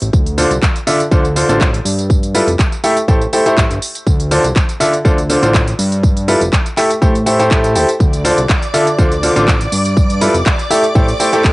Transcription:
0.02 A1, closed hi-hat, tambourine
0.13 D2, kick, tambourine
0.26 closed hi-hat, tambourine
0.38 D3 D4 F4 A4 C5, open hi-hat, tambourine
0.51 C2, closed hi-hat, tambourine
0.62 kick, clap, tambourine
0.76 closed hi-hat, tambourine
0.87 D3 D4 F4 A4 E5, open hi-hat, tambourine
1.00 closed hi-hat, tambourine
1.12 D2 D3 D4 F4 A4 C5, kick, tambourine
1.25 closed hi-hat, tambourine
1.36 D3 D4 F4 A4 C5, open hi-hat, tambourine
1.49 A1 D3 D4 F4 A4 C5, closed hi-hat, tambourine
1.61 kick, clap, tambourine
1.74 closed hi-hat, tambourine
1.85 G2, open hi-hat, tambourine
1.99 closed hi-hat, tambourine
2.10 kick, tambourine
2.23 closed hi-hat, tambourine
2.35 G3 E4 F4 A4 B4, open hi-hat, tambourine
2.47 F1, closed hi-hat, tambourine
2.59 kick, clap, tambourine
2.72 closed hi-hat, tambourine
2.84 A3 E4 G4 A4 E5, open hi-hat, tambourine
2.97 closed hi-hat, tambourine
3.08 A1 A3 E4 G4 A4 C5, kick, tambourine
3.21 closed hi-hat, tambourine
3.33 A3 E4 G4 A4 C5, open hi-hat, tambourine
3.46 A3 E4 G4 A4 C5, closed hi-hat, tambourine
3.57 A1, kick, clap, tambourine
3.71 G1, closed hi-hat, tambourine
3.82 open hi-hat, tambourine
3.95 closed hi-hat, tambourine
4.07 D2, kick, tambourine
4.20 closed hi-hat, tambourine
4.31 D3 D4 F4 A4 C5, open hi-hat, tambourine
4.44 C2, closed hi-hat, tambourine
4.56 kick, clap, tambourine
4.69 closed hi-hat, tambourine
4.80 D3 D4 F4 A4 E5, open hi-hat, tambourine
4.93 closed hi-hat, tambourine
5.05 D2 D3 D4 F4 A4 C5, kick, tambourine
5.18 closed hi-hat, tambourine
5.30 D3 D4 F4 A4 C5, open hi-hat, tambourine
5.43 A1 D3 D4 F4 A4 C5, closed hi-hat, tambourine
5.54 kick, clap, tambourine
5.68 closed hi-hat, tambourine
5.79 G2, open hi-hat, tambourine
5.92 closed hi-hat, tambourine
6.03 kick, tambourine
6.17 closed hi-hat, tambourine
6.28 G3 E4 F4 A4 B4, open hi-hat, tambourine
6.41 F1, closed hi-hat, tambourine
6.53 kick, clap, tambourine
6.66 closed hi-hat, tambourine
6.77 A3 E4 G4 A4 E5, clap, open hi-hat, tambourine
6.90 closed hi-hat, tambourine
7.02 A2 A3 E4 G4 A4 C5, kick, tambourine
7.15 closed hi-hat, tambourine
7.26 A3 E4 G4 A4 C5, open hi-hat, tambourine
7.39 A3 E4 G4 A4 C5, closed hi-hat, tambourine
7.51 A3 E4 G4 A4, kick, clap, tambourine
7.64 closed hi-hat, tambourine
7.75 D2 E4 G4 A4 C5, open hi-hat, tambourine
7.89 closed hi-hat, tambourine
8.00 D2 D5 D6, kick, tambourine
8.13 closed hi-hat, tambourine
8.25 D3 D4 F4 A4 C5, open hi-hat, tambourine
8.38 C2, closed hi-hat, tambourine
8.49 kick, clap, tambourine
8.62 closed hi-hat, tambourine
8.74 D3 D4 F4 A4 E5, open hi-hat, tambourine
8.87 closed hi-hat, tambourine
8.98 D2 D3 D4 F4 A4 C5, kick, tambourine
9.12 closed hi-hat, tambourine
9.23 D3 D4 F4 A4 C5, open hi-hat, tambourine
9.36 A1 D3 D4 F4 A4 C5, closed hi-hat, tambourine
9.48 kick, clap, tambourine
9.61 closed hi-hat, tambourine
9.72 G2, open hi-hat, tambourine
9.85 closed hi-hat, tambourine
9.97 kick, tambourine
10.10 closed hi-hat, tambourine
10.21 G3 E4 F4 A4 B4, open hi-hat, tambourine
10.34 F1, closed hi-hat, tambourine
10.46 kick, clap, tambourine
10.59 closed hi-hat, tambourine
10.70 A3 E4 G4 A4 E5, open hi-hat, tambourine
10.84 closed hi-hat, tambourine
10.95 A1 A3 E4 G4 A4 C5, kick, tambourine
11.08 closed hi-hat, tambourine
11.20 A3 E4 G4 A4 C5, open hi-hat, tambourine
11.33 A3 E4 G4 A4 C5, closed hi-hat, tambourine
11.44 A1, kick, clap, tambourine

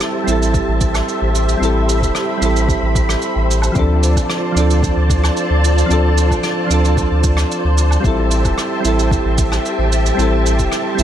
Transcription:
Already playing: G3 C4 E4 G4 A4 C5 E5 A5
0.00 cross-stick, shaker
0.24 A1 G3 C4, shaker
0.29 E4 A4
0.42 shaker
0.54 kick, shaker
0.68 A1
0.81 kick, shaker
0.94 cross-stick, low woodblock, shaker
1.08 shaker
1.22 A1
1.35 shaker
1.49 shaker
1.57 A1 G3 C4 B5
1.62 E4 A4, shaker
1.89 shaker
2.02 E1, kick, shaker
2.15 cross-stick, shaker
2.38 A1 G3 C4
2.42 E4 A4, shaker
2.56 shaker
2.69 kick, shaker
2.82 A1
2.95 kick, shaker
3.09 cross-stick, shaker
3.22 shaker
3.36 A1
3.51 shaker
3.62 low woodblock, shaker
3.72 D2 F3 C4 F4 D5 A5, kick, shaker
3.77 D4 A4
4.03 shaker
4.17 A1, kick, low woodblock, shaker
4.30 cross-stick, shaker
4.52 D2 F3 C4
4.57 D4 A4, shaker
4.70 shaker
4.83 kick, shaker
4.97 D2
5.10 kick, shaker
5.24 cross-stick, low woodblock, shaker
5.37 shaker
5.50 D2
5.64 shaker
5.78 shaker
5.86 F3 C4
5.90 D2 D4 A4, shaker
6.18 shaker
6.31 A1, kick, low woodblock, shaker
6.43 cross-stick, shaker
6.67 D2 F3 C4
6.71 D4 A4, shaker
6.85 shaker
6.97 kick, shaker
7.11 D2
7.24 kick, shaker
7.37 cross-stick, shaker
7.52 shaker
7.65 D2
7.78 shaker
7.91 low woodblock, shaker
8.00 G3 C4 G4 E5 A5
8.04 A1 E4 A4, kick, shaker
8.31 shaker
8.45 E1, kick, low woodblock, shaker
8.58 cross-stick, shaker
8.80 G3 C4
8.85 A1 E4 A4, shaker
8.99 shaker
9.11 kick, shaker
9.25 A1
9.38 kick, shaker
9.52 cross-stick, low woodblock, shaker
9.66 shaker
9.79 A1
9.92 shaker
10.06 shaker
10.15 A1 G3 C4
10.19 E4 A4, shaker
10.46 shaker
10.59 E1, kick, shaker
10.72 cross-stick, shaker
10.95 A1 G3 C4, shaker
11.00 E4

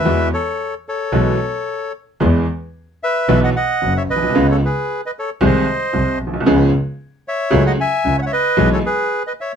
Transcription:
Already playing: B4 E5
0.05 E2 E3 G#3 B3 F#4
0.34 A4 C#5
0.88 A4 C#5
1.12 B1 B2 E3 G#3 B3 F#4
2.20 E2 E3 G#3 B3 G#4
3.03 B4 E5
3.28 B1 B2 E3 F#3 B3 F#4
3.44 D#5 F#5
3.56 D#5 F#5
3.81 F#1 F#2
3.97 C#5 E5
4.09 B1 B4 D#5
4.16 A#1
4.23 B1
4.30 C2
4.35 C#2 C#3 G#3 B3 F4
4.51 A4 C#5
4.65 G#4 B4
5.06 B4 D#5
5.19 A4 C#5
5.41 C2 C3 D#3 G#3 C4 G#4
5.45 C5 D#5
5.93 C2 C3
6.21 B1
6.27 A#1
6.34 B1
6.40 C2
6.46 C#2 C#3 F3 B3 C#4 G#4
7.28 C#5 E5
7.50 C#2 C#3 F#3 A3 C#4 G#4
7.67 D#5 F#5
7.81 E5 G#5
8.05 C#2 C#3
8.22 C#5 F#5
8.27 E5
8.32 B4 D#5
8.57 B1 B2 E3 G#3 B3 G#4
8.73 A4 C#5
8.86 G#4 B4
9.27 B4 D#5
9.41 C#5 E5

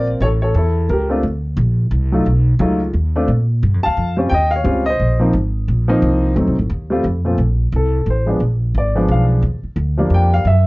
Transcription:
Already playing: A#1 A#3 C4 F4 A#4
0.20 A1 A4 C#5
0.42 A4 C#5
0.54 E2 E4 A4
0.89 C#2 G4 A#4
1.09 A3 C4 D4 F4
1.23 D2
1.57 A#1
1.91 C2
2.12 F#3 A3 D#4 F4
2.26 B1
2.59 C#2 F#3 A3 D#4 F4
2.93 D#2
3.16 A3 C4 D4 F4
3.28 A#2
3.63 G2
3.74 F2
3.83 D2 F5 A5
3.97 F2
4.17 G3 C4 C#4 F4
4.29 D#2 G5
4.34 D#5
4.51 F5
4.56 C#5
4.64 C#2 G3 C4 C#4 F4
4.86 C5 D#5
5.00 A#1
5.20 F3 A#3 C4 D#4
5.33 G#1
5.68 A#1
5.88 F3 A#3 C4 D#4
6.02 C2
6.36 D2 F#3 A3 C4 D#4
6.47 C2
6.59 A1
6.70 D#2
6.90 G3 A3 C4 F4
7.04 F2
7.25 A#2 F3 A3 C4 F4
7.38 A#1
7.72 C2 A4
8.06 A1
8.10 C5
8.26 F3 G#3 B3 D4
8.40 A#1
8.75 G#1 D5
8.95 F3 G#3 B3 D4
9.08 B1 F5
9.42 D#2
9.63 muted upright bass stroke
9.76 D2
9.97 F3 G3 A#3 D4
10.10 F2
10.14 G5
10.34 F5
10.45 F#2 E5

